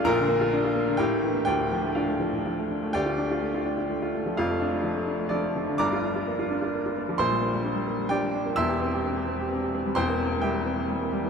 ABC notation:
X:1
M:3/4
L:1/16
Q:1/4=128
K:Dm
V:1 name="Grand piano"
[Bb]8 [Gg]4 | [Gg]4 [Ff]6 z2 | [Gdg]12 | [Fdf]8 [DAd]4 |
[dbd']12 | [cc']8 [Gdg]4 | [K:Cmix] [ec'e']12 | [cgc']4 [Geg]4 z4 |]
V:2 name="Grand piano"
[B,,,B,,] D, B, F D F B, D, A,, A, E, B, | D,, A,, F, A, D A, F, A,, F, A, D A, | D,, F D F A, F D F A, F A, F, | [F,,,F,,] A, D A, F, A, D A, F, A, F, D, |
[G,,,G,,] F D F B, F D F B, F B, F, | [B,,,B,,] G, B, G, D G, B, G, D G, D B, | [K:Cmix] [E,,,E,,] G C G C G C G C G C G, | [E,,,E,,] B, C B, G, B, C B, G, B, G, E, |]